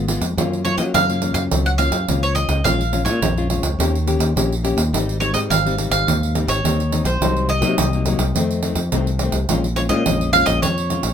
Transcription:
Already playing: fingered electric bass G#1, nylon-string guitar G#2
0.08 nylon-string guitar G#3 B3 F4, pandeiro
0.21 fingered electric bass F2, pandeiro
0.37 fingered electric bass F#2, nylon-string guitar F#3 A#3 C#4 F4, pandeiro
0.53 pandeiro
0.65 nylon-string guitar A#3 C#4 F4, mandolin C#5, pandeiro
0.78 fingered electric bass F#3, nylon-string guitar A#3 C#4 F4, mandolin D#5, pandeiro
0.94 fingered electric bass F#2, nylon-string guitar C#3, mandolin F5, pandeiro
1.09 nylon-string guitar A#3 C#4 F4, pandeiro
1.22 nylon-string guitar A#3 C#4 F4, pandeiro
1.34 fingered electric bass F#2, mandolin F5, pandeiro
1.51 fingered electric bass C#2, nylon-string guitar F#3, pandeiro
1.66 mandolin F#5, pandeiro
1.78 nylon-string guitar A#3 C#4 F4, mandolin F5, pandeiro
1.91 fingered electric bass F#2, pandeiro
2.08 fingered electric bass C#2, nylon-string guitar C#3 A#3 C#4 F4, pandeiro
2.23 mandolin C#5, pandeiro
2.35 mandolin D#5, pandeiro
2.48 fingered electric bass C#2, pandeiro
2.64 fingered electric bass A#1, nylon-string guitar A#2 G#3 C#4 F4, mandolin F5, pandeiro
2.81 pandeiro
2.92 nylon-string guitar G#3 C#4 F4, pandeiro
3.05 fingered electric bass A#2, nylon-string guitar G#3 C#4 F4, mandolin C#5, pandeiro
3.22 fingered electric bass A#1, nylon-string guitar F2, pandeiro
3.37 nylon-string guitar G#3 C#4 F4, pandeiro
3.50 nylon-string guitar G#3 C#4 F4, pandeiro
3.62 fingered electric bass C#2, pandeiro
3.79 fingered electric bass D#2, nylon-string guitar D#3 A#3 C#4 G4, pandeiro
3.95 pandeiro
4.07 nylon-string guitar A#3 C#4 G4, pandeiro
4.19 fingered electric bass D#2, pandeiro
4.36 fingered electric bass A#1, nylon-string guitar A#2 A#3 C#4 G4, pandeiro
4.52 pandeiro
4.64 nylon-string guitar A#3 C#4 G4, pandeiro
4.77 fingered electric bass D#2, pandeiro
4.93 fingered electric bass G#1, nylon-string guitar G#2 G3 C4 D#4, pandeiro
5.09 pandeiro
5.20 nylon-string guitar G3 C4 D#4, mandolin C#5, pandeiro
5.33 fingered electric bass G#2, nylon-string guitar G3 C4 D#4, mandolin D#5, pandeiro
5.50 fingered electric bass G#1, nylon-string guitar D#3, mandolin F5, pandeiro
5.66 nylon-string guitar G3 C4 D#4, pandeiro
5.78 nylon-string guitar G3 C4 D#4, pandeiro
5.91 fingered electric bass G#1, mandolin F5, pandeiro
6.07 fingered electric bass D#2, nylon-string guitar G#2, pandeiro
6.23 pandeiro
6.35 nylon-string guitar G3 C4 D#4, pandeiro
6.47 fingered electric bass G#1, mandolin C#5, pandeiro
6.64 fingered electric bass D#2, nylon-string guitar D#3 G3 C4 D#4, pandeiro
6.80 pandeiro
6.92 nylon-string guitar G3 C4 D#4, pandeiro
7.04 fingered electric bass B1, mandolin C5, pandeiro
7.21 fingered electric bass C2, nylon-string guitar C3 F#3 A#3 D#4, pandeiro
7.37 pandeiro
7.49 mandolin D#5, pandeiro
7.61 fingered electric bass C3, nylon-string guitar F#3 A#3 D#4, pandeiro
7.78 fingered electric bass C2, nylon-string guitar C3, pandeiro
7.93 nylon-string guitar F#3 A#3 D#4, pandeiro
8.06 nylon-string guitar F#3 A#3 D#4, pandeiro
8.18 fingered electric bass C2, pandeiro
8.35 fingered electric bass F2, nylon-string guitar F2 D#3 A3 C4, pandeiro
8.51 pandeiro
8.63 nylon-string guitar D#3 A3 C4, pandeiro
8.75 fingered electric bass F2, pandeiro
8.92 fingered electric bass C2, nylon-string guitar C3 D#3 A3 C4, pandeiro
9.07 pandeiro
9.19 nylon-string guitar D#3 A3 C4, pandeiro
9.32 fingered electric bass C2, pandeiro
9.49 fingered electric bass A#1, nylon-string guitar A#2 G#3 C#4 F4, pandeiro
9.64 pandeiro
9.76 nylon-string guitar G#3 C#4 F4, mandolin C#5, pandeiro
9.89 fingered electric bass A#2, nylon-string guitar G#3 C#4 F4, mandolin D#5, pandeiro
10.06 fingered electric bass A#1, nylon-string guitar F2, pandeiro
10.21 pandeiro
10.33 nylon-string guitar G#3 C#4 F4, mandolin F5, pandeiro
10.46 fingered electric bass A#1, mandolin D#5, pandeiro
10.62 fingered electric bass F2, nylon-string guitar A#2, mandolin C#5, pandeiro
10.78 pandeiro
10.90 nylon-string guitar G#3 C#4 F4, pandeiro
11.03 fingered electric bass A#1, pandeiro

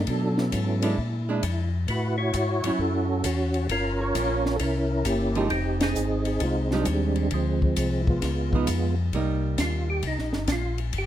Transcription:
0.07 tonewheel organ B2 F#3 D4 A4, kick, ride
0.32 tonewheel organ D4
0.37 tonewheel organ B3 E4, snare
0.41 tonewheel organ C#4
0.52 tonewheel organ G#2, kick, hi-hat pedal, ride
0.82 hollow-body jazz guitar G#3 D4 E4, ride
0.98 tonewheel organ A#2, kick
1.29 hollow-body jazz guitar G#3 D4 E4
1.43 tonewheel organ F2, kick, hi-hat pedal, ride
1.88 tonewheel organ A2 E4 F#4 B4, kick, ride
2.18 tonewheel organ E4 F#4 C#5
2.34 tonewheel organ G#2, kick, hi-hat pedal, ride
2.64 tonewheel organ G#2 C#5, hollow-body jazz guitar F#3 C#4 E4, ride
2.79 tonewheel organ F#2 C#4 F#4 A4, kick
3.24 tonewheel organ E2 C#4 F#4, kick, hi-hat pedal, ride
3.54 ride
3.69 tonewheel organ G1 C#4 F4 A#4, kick, ride
4.01 tonewheel organ F4 A#4 C#5
4.15 tonewheel organ A#1, hollow-body jazz guitar F3 A#3 C#4, kick, hi-hat pedal, ride
4.46 tonewheel organ C#5, snare
4.56 tonewheel organ A4 A#4, ride
4.60 tonewheel organ C2 C#4 E4, kick
5.05 tonewheel organ G1 A#3 E4 G4, kick, hi-hat pedal, ride
5.35 hollow-body jazz guitar F3 G#3 D#4 G4, ride
5.50 tonewheel organ F1 C4 D#4 G4, kick, ride
5.81 tonewheel organ C4 D#4 G#4, snare, ride
5.95 tonewheel organ G#1, hi-hat pedal
6.25 tonewheel organ G#4, ride
6.40 tonewheel organ C2 G#3 C4 F4, kick, ride
6.71 hollow-body jazz guitar F3 G#3 D#4 G4, tonewheel organ G3 G#3 D4, snare
6.85 tonewheel organ D#2, kick, hi-hat pedal, ride
7.16 ride
7.31 tonewheel organ D2 F3 G#3, kick, ride
7.35 tonewheel organ C4
7.62 kick
7.76 tonewheel organ C2, kick, hi-hat pedal, ride
8.00 tonewheel organ E4
8.07 tonewheel organ G#3 B3 F4, kick
8.22 tonewheel organ C#2, kick, snare, ride
8.53 hollow-body jazz guitar F3 B3 D#4, kick
8.67 tonewheel organ F2, kick, hi-hat pedal, ride
9.13 tonewheel organ C2, hollow-body jazz guitar G3 A#3 D#4, kick, ride
9.58 tonewheel organ D#2 F4, kick, snare, hi-hat pedal, ride
9.90 tonewheel organ G4
10.03 tonewheel organ C2, kick, ride
10.07 tonewheel organ D#4
10.19 tonewheel organ A#1, snare
10.33 tonewheel organ G1, snare
10.48 tonewheel organ A#1, kick, snare, hi-hat pedal, ride
10.52 tonewheel organ F4
10.78 ride
10.93 tonewheel organ G1, kick, ride
10.98 tonewheel organ G4

